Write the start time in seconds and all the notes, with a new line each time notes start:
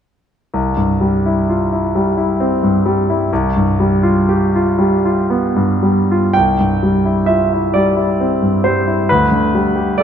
0.54 C2
0.77 G2
1.01 G3
1.26 E4
1.49 F4
1.72 E4
1.95 G3
2.17 E4
2.40 C4
2.63 G2
2.86 G3
3.10 E4
3.33 C2
3.57 G2
3.80 G3
4.03 F4
4.29 G4
4.56 F4
4.79 G3
5.05 F4
5.30 B3
5.56 G2
5.83 G3
6.11 F4
6.33 C2 G5
6.59 G2
6.83 G3
7.05 E4
7.26 F4 E5
7.53 E4
7.74 G3 D5
7.96 E4
8.20 C4
8.42 G2
8.64 G3 C5
8.87 E4
9.09 D2 B4
9.32 D3
9.55 G3
9.76 G4
9.98 A4 D5